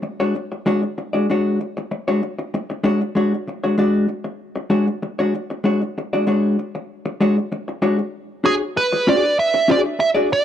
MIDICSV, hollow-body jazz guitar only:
0, 0, Header, 1, 3, 480
1, 0, Start_track
1, 0, Tempo, 621762
1, 515, Time_signature, 4, 2, 24, 8
1, 8064, End_track
2, 0, Start_track
2, 0, Title_t, "Hollow-body jazz guitar"
2, 0, Program_c, 0, 26
2, 154, Note_on_c, 0, 73, 72
2, 155, Note_on_c, 0, 66, 67
2, 162, Note_on_c, 0, 62, 64
2, 165, Note_on_c, 0, 56, 55
2, 262, Note_off_c, 0, 56, 0
2, 262, Note_off_c, 0, 62, 0
2, 269, Note_off_c, 0, 66, 0
2, 271, Note_off_c, 0, 73, 0
2, 509, Note_on_c, 0, 56, 79
2, 514, Note_on_c, 0, 62, 88
2, 515, Note_on_c, 0, 66, 89
2, 521, Note_on_c, 0, 73, 88
2, 627, Note_off_c, 0, 73, 0
2, 632, Note_off_c, 0, 66, 0
2, 635, Note_off_c, 0, 62, 0
2, 640, Note_off_c, 0, 56, 0
2, 874, Note_on_c, 0, 74, 52
2, 881, Note_on_c, 0, 62, 44
2, 881, Note_on_c, 0, 66, 53
2, 887, Note_on_c, 0, 56, 52
2, 967, Note_off_c, 0, 74, 0
2, 971, Note_off_c, 0, 62, 0
2, 971, Note_off_c, 0, 66, 0
2, 974, Note_off_c, 0, 56, 0
2, 1000, Note_on_c, 0, 56, 72
2, 1004, Note_on_c, 0, 62, 73
2, 1010, Note_on_c, 0, 66, 87
2, 1012, Note_on_c, 0, 73, 86
2, 1221, Note_off_c, 0, 56, 0
2, 1223, Note_off_c, 0, 62, 0
2, 1226, Note_off_c, 0, 66, 0
2, 1227, Note_off_c, 0, 73, 0
2, 1604, Note_on_c, 0, 73, 80
2, 1608, Note_on_c, 0, 66, 72
2, 1610, Note_on_c, 0, 62, 63
2, 1617, Note_on_c, 0, 56, 61
2, 1709, Note_off_c, 0, 56, 0
2, 1710, Note_off_c, 0, 62, 0
2, 1714, Note_off_c, 0, 66, 0
2, 1715, Note_off_c, 0, 73, 0
2, 2189, Note_on_c, 0, 56, 86
2, 2192, Note_on_c, 0, 62, 84
2, 2198, Note_on_c, 0, 66, 86
2, 2203, Note_on_c, 0, 73, 98
2, 2315, Note_off_c, 0, 73, 0
2, 2320, Note_off_c, 0, 62, 0
2, 2320, Note_off_c, 0, 66, 0
2, 2322, Note_off_c, 0, 56, 0
2, 2433, Note_on_c, 0, 56, 68
2, 2443, Note_on_c, 0, 62, 71
2, 2445, Note_on_c, 0, 66, 85
2, 2446, Note_on_c, 0, 73, 75
2, 2564, Note_off_c, 0, 56, 0
2, 2569, Note_off_c, 0, 62, 0
2, 2570, Note_off_c, 0, 66, 0
2, 2571, Note_off_c, 0, 73, 0
2, 2807, Note_on_c, 0, 73, 50
2, 2809, Note_on_c, 0, 66, 49
2, 2814, Note_on_c, 0, 62, 47
2, 2819, Note_on_c, 0, 56, 44
2, 2896, Note_off_c, 0, 73, 0
2, 2897, Note_off_c, 0, 66, 0
2, 2900, Note_off_c, 0, 62, 0
2, 2902, Note_off_c, 0, 56, 0
2, 2915, Note_on_c, 0, 56, 82
2, 2920, Note_on_c, 0, 62, 81
2, 2924, Note_on_c, 0, 74, 80
2, 2925, Note_on_c, 0, 66, 89
2, 3141, Note_off_c, 0, 56, 0
2, 3143, Note_off_c, 0, 62, 0
2, 3145, Note_off_c, 0, 74, 0
2, 3146, Note_off_c, 0, 66, 0
2, 3628, Note_on_c, 0, 56, 80
2, 3628, Note_on_c, 0, 62, 76
2, 3631, Note_on_c, 0, 66, 96
2, 3637, Note_on_c, 0, 73, 81
2, 3753, Note_off_c, 0, 73, 0
2, 3756, Note_off_c, 0, 66, 0
2, 3761, Note_off_c, 0, 62, 0
2, 3763, Note_off_c, 0, 56, 0
2, 4006, Note_on_c, 0, 73, 79
2, 4014, Note_on_c, 0, 62, 63
2, 4014, Note_on_c, 0, 66, 80
2, 4020, Note_on_c, 0, 56, 61
2, 4117, Note_off_c, 0, 56, 0
2, 4118, Note_off_c, 0, 62, 0
2, 4121, Note_off_c, 0, 73, 0
2, 4122, Note_off_c, 0, 66, 0
2, 4354, Note_on_c, 0, 56, 71
2, 4361, Note_on_c, 0, 62, 74
2, 4365, Note_on_c, 0, 66, 71
2, 4366, Note_on_c, 0, 73, 80
2, 4481, Note_off_c, 0, 73, 0
2, 4486, Note_off_c, 0, 56, 0
2, 4490, Note_off_c, 0, 62, 0
2, 4492, Note_off_c, 0, 66, 0
2, 4733, Note_on_c, 0, 74, 61
2, 4735, Note_on_c, 0, 66, 62
2, 4740, Note_on_c, 0, 62, 52
2, 4749, Note_on_c, 0, 56, 44
2, 4821, Note_off_c, 0, 66, 0
2, 4821, Note_off_c, 0, 74, 0
2, 4824, Note_off_c, 0, 62, 0
2, 4828, Note_off_c, 0, 56, 0
2, 4838, Note_on_c, 0, 56, 70
2, 4843, Note_on_c, 0, 62, 79
2, 4843, Note_on_c, 0, 66, 76
2, 4849, Note_on_c, 0, 73, 89
2, 5062, Note_off_c, 0, 56, 0
2, 5065, Note_off_c, 0, 62, 0
2, 5065, Note_off_c, 0, 66, 0
2, 5068, Note_off_c, 0, 73, 0
2, 5562, Note_on_c, 0, 56, 85
2, 5565, Note_on_c, 0, 62, 81
2, 5570, Note_on_c, 0, 66, 86
2, 5573, Note_on_c, 0, 73, 86
2, 5680, Note_off_c, 0, 73, 0
2, 5690, Note_off_c, 0, 56, 0
2, 5690, Note_off_c, 0, 66, 0
2, 5691, Note_off_c, 0, 62, 0
2, 6036, Note_on_c, 0, 56, 74
2, 6039, Note_on_c, 0, 62, 78
2, 6041, Note_on_c, 0, 66, 82
2, 6043, Note_on_c, 0, 73, 81
2, 6156, Note_off_c, 0, 73, 0
2, 6158, Note_off_c, 0, 66, 0
2, 6163, Note_off_c, 0, 62, 0
2, 6166, Note_off_c, 0, 56, 0
2, 6514, Note_on_c, 0, 62, 78
2, 6521, Note_on_c, 0, 66, 79
2, 6523, Note_on_c, 0, 68, 83
2, 6527, Note_on_c, 0, 73, 89
2, 6644, Note_off_c, 0, 62, 0
2, 6647, Note_off_c, 0, 66, 0
2, 6648, Note_off_c, 0, 68, 0
2, 6650, Note_off_c, 0, 73, 0
2, 7003, Note_on_c, 0, 62, 83
2, 7007, Note_on_c, 0, 66, 84
2, 7010, Note_on_c, 0, 68, 92
2, 7014, Note_on_c, 0, 73, 91
2, 7125, Note_off_c, 0, 68, 0
2, 7126, Note_off_c, 0, 73, 0
2, 7128, Note_off_c, 0, 66, 0
2, 7158, Note_off_c, 0, 62, 0
2, 7474, Note_on_c, 0, 62, 88
2, 7482, Note_on_c, 0, 66, 98
2, 7483, Note_on_c, 0, 68, 103
2, 7487, Note_on_c, 0, 73, 100
2, 7594, Note_off_c, 0, 73, 0
2, 7601, Note_off_c, 0, 68, 0
2, 7602, Note_off_c, 0, 66, 0
2, 7632, Note_off_c, 0, 62, 0
2, 7832, Note_on_c, 0, 74, 91
2, 7835, Note_on_c, 0, 68, 74
2, 7842, Note_on_c, 0, 62, 64
2, 7844, Note_on_c, 0, 66, 70
2, 7943, Note_off_c, 0, 62, 0
2, 7946, Note_off_c, 0, 66, 0
2, 7948, Note_off_c, 0, 68, 0
2, 7948, Note_off_c, 0, 74, 0
2, 8064, End_track
3, 0, Start_track
3, 0, Title_t, "Muted hollow-body jazz guitar strokes"
3, 18, Note_on_c, 9, 29, 30
3, 95, Note_off_c, 9, 29, 0
3, 271, Note_on_c, 9, 29, 42
3, 348, Note_off_c, 9, 29, 0
3, 399, Note_on_c, 9, 29, 36
3, 476, Note_off_c, 9, 29, 0
3, 636, Note_on_c, 9, 29, 44
3, 713, Note_off_c, 9, 29, 0
3, 755, Note_on_c, 9, 29, 33
3, 832, Note_off_c, 9, 29, 0
3, 1238, Note_on_c, 9, 29, 33
3, 1315, Note_off_c, 9, 29, 0
3, 1366, Note_on_c, 9, 29, 46
3, 1444, Note_off_c, 9, 29, 0
3, 1477, Note_on_c, 9, 29, 37
3, 1554, Note_off_c, 9, 29, 0
3, 1718, Note_on_c, 9, 29, 38
3, 1795, Note_off_c, 9, 29, 0
3, 1842, Note_on_c, 9, 29, 46
3, 1919, Note_off_c, 9, 29, 0
3, 1961, Note_on_c, 9, 29, 47
3, 2038, Note_off_c, 9, 29, 0
3, 2084, Note_on_c, 9, 29, 43
3, 2161, Note_off_c, 9, 29, 0
3, 2325, Note_on_c, 9, 29, 46
3, 2402, Note_off_c, 9, 29, 0
3, 2580, Note_on_c, 9, 29, 39
3, 2658, Note_off_c, 9, 29, 0
3, 2683, Note_on_c, 9, 29, 32
3, 2760, Note_off_c, 9, 29, 0
3, 3151, Note_on_c, 9, 29, 30
3, 3229, Note_off_c, 9, 29, 0
3, 3276, Note_on_c, 9, 29, 41
3, 3353, Note_off_c, 9, 29, 0
3, 3517, Note_on_c, 9, 29, 41
3, 3594, Note_off_c, 9, 29, 0
3, 3763, Note_on_c, 9, 29, 46
3, 3840, Note_off_c, 9, 29, 0
3, 3879, Note_on_c, 9, 29, 37
3, 3956, Note_off_c, 9, 29, 0
3, 4126, Note_on_c, 9, 29, 43
3, 4204, Note_off_c, 9, 29, 0
3, 4248, Note_on_c, 9, 29, 42
3, 4325, Note_off_c, 9, 29, 0
3, 4491, Note_on_c, 9, 29, 40
3, 4568, Note_off_c, 9, 29, 0
3, 4615, Note_on_c, 9, 29, 37
3, 4692, Note_off_c, 9, 29, 0
3, 5088, Note_on_c, 9, 29, 36
3, 5165, Note_off_c, 9, 29, 0
3, 5211, Note_on_c, 9, 29, 38
3, 5288, Note_off_c, 9, 29, 0
3, 5447, Note_on_c, 9, 29, 54
3, 5524, Note_off_c, 9, 29, 0
3, 5689, Note_on_c, 9, 29, 41
3, 5766, Note_off_c, 9, 29, 0
3, 5804, Note_on_c, 9, 29, 39
3, 5881, Note_off_c, 9, 29, 0
3, 5929, Note_on_c, 9, 29, 35
3, 6007, Note_off_c, 9, 29, 0
3, 6165, Note_on_c, 9, 29, 42
3, 6242, Note_off_c, 9, 29, 0
3, 6766, Note_on_c, 9, 29, 38
3, 6843, Note_off_c, 9, 29, 0
3, 6891, Note_on_c, 9, 29, 55
3, 6968, Note_off_c, 9, 29, 0
3, 7135, Note_on_c, 9, 29, 40
3, 7212, Note_off_c, 9, 29, 0
3, 7365, Note_on_c, 9, 29, 49
3, 7442, Note_off_c, 9, 29, 0
3, 7603, Note_on_c, 9, 29, 37
3, 7680, Note_off_c, 9, 29, 0
3, 7712, Note_on_c, 9, 29, 43
3, 7789, Note_off_c, 9, 29, 0
3, 7952, Note_on_c, 9, 29, 39
3, 8029, Note_off_c, 9, 29, 0
3, 8064, End_track
0, 0, End_of_file